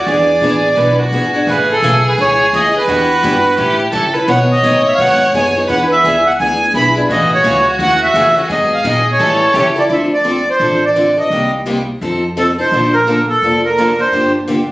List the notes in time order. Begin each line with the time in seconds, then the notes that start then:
Already playing: D5
0.06 E2 E3 B3 D4 G#4
0.41 A1 E3 B3 D4 G#4
0.77 B1 E3 B3 D4 G#4 B4
0.99 F#4
1.12 G#1 E3 B3 D4 G#4
1.34 B3 D4 G#4
1.47 A1 C#3 E3 A3 C#4 G#4 B4
1.71 A4
1.82 B1 C#3 E3 A3 C#4 G#4
2.08 B4
2.18 C#2 C#3 E3 A3 C#4 G#4 C#5
2.53 D#2 C#3 E3 A3 C#4 G#4 D#5
2.74 A3 C#4 G#4 B4
2.88 E2 E3 B3 D4 F#4 G4
3.23 G2 E3 B3 D4 G4
3.57 A2 E3 G3 C#4 E4 G4 A4
3.92 C#3 E3 G3 C#4 E4 A4
4.13 C#4 E4 A4 B4
4.27 B2 D#3 F#3 B3 D#4 G#4 C#5 F#5
4.52 D#5
4.63 A2 B2 D#3 F#3 B3 D#4 G#4
4.87 E5
4.94 F5
4.98 G#2 B2 D#3 F#3 B3 D#4 G#4 F#5
5.33 F#2 B2 D#3 F#3 B3 D#4 G#4 G#5
5.56 F#3 B3 D#4 G#4
5.68 E2 E3 B3 D4 G#4 B4 F#5
5.92 E5
6.03 C#2 E3 B3 D4 G#4
6.27 F#5
6.40 D2 E3 B3 D4 G#4 G#5
6.74 B1 E3 B3 D4 E4 G#4 B5
6.96 B3 D4 G#4
7.08 A1 C#3 E3 A3 C#4 F#4 G#4 D#5
7.34 C#5
7.44 C#2 C#3 E3 A3 C#4 G#4
7.79 D#2 C#3 E3 A3 C#4 G#4 F#5
8.03 E5
8.14 E2 C#3 E3 A3 C#4 G#4
8.35 A3 C#4 G#4
8.48 G#2 D#3 F#3 B3 D#4 G#4
8.52 D#5
8.74 F5
8.84 A#2 D#3 F#3 B3 D#4 G#4
8.90 D#5
9.12 C#5
9.19 A2 E3 G3 C#4 E4 A4
9.54 C#3 E3 G3 C#4 E4 G4 A4
9.59 C#5
9.76 C#4 E4 A4 D5
9.89 D2 D3 F3 C4 D4 A4 E5
10.14 D5
10.24 D3 F3 C4 D4 A4
10.50 C5
10.60 A1 D3 F3 C4 D4 A4
10.86 D5
10.95 D3 F3 C4 D4 A4
11.17 C4 D4 A4 D#5
11.30 C2 C3 G3 A#3 D#4 G4
11.66 C3 G3 A#3 D#4 G4
12.01 F2 F3 C4 D#4 A4
12.37 F3 C4 D#4 A4
12.58 C4 D#4 A4 C5
12.72 A#1 D3 F3 A#3 D4 A4
12.93 A#4
13.07 D3 F3 A#3 D4 A4
13.29 A4
13.42 F1 D3 F3 A#3 D4 A4
13.65 A#4
13.78 D3 F3 A#3 D4 A4
13.99 A#3 D4 A4 C5
14.12 G1 D3 F3 A#3 D4 G4
14.48 D3 F3 A#3 D4 G4